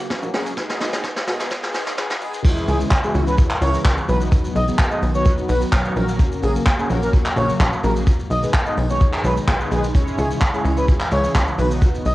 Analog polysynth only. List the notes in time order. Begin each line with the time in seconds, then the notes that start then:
0.10 F#3 A#3 C#4 F#4
0.33 F#3 A#3 C#4 G#4
0.57 B3 D#4
1.27 G#3 B3 D#4 G#4
1.97 G#3 B3 D#4 G#4
2.21 G#3 B3 D#4 G#4
2.44 E3 G#3 C#4 E4 G#4
3.04 E3 G#3 C#4 E4 F#4
3.61 E3 G#3 C#4 E4 A#4
4.08 F#3 B3 D#4 F#4 B4
4.68 F#3 B3 D#4 F#4 G#4
5.14 F#3 B3 D#4 F#4 B4
5.72 F#3 B3 D#4 F#4 C#5
5.96 F#3 A#3 C#4 F#4 A#4
6.78 F#3 A#3 C#4 F#4 A#4
7.36 F#3 A#3 C#4 F#4 A#4
7.84 F#3 A#3 C#4 F#4 G#4
8.43 G#3 B3 D#4 G#4 B4
8.90 G#3 B3 D#4 G#4 C#5
9.48 G#3 B3 D#4 G#4 B4
9.94 G#3 C#4 E4 G#4 C#5
10.53 G#3 C#4 E4 G#4 C#5
11.11 G#3 C#4 E4 G#4 C#5
11.58 F#3 B3 D#4 F#4 B4